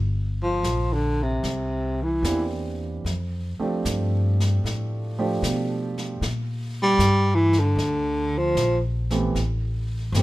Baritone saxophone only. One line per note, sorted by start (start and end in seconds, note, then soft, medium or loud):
0.43 0.95 F3 medium
0.93 1.24 D3 medium
1.23 2.04 C3 medium
2.02 2.46 E3 medium
6.82 7.37 G3 loud
7.35 7.60 E3 medium
7.59 8.40 D3 medium
8.38 8.78 F3 medium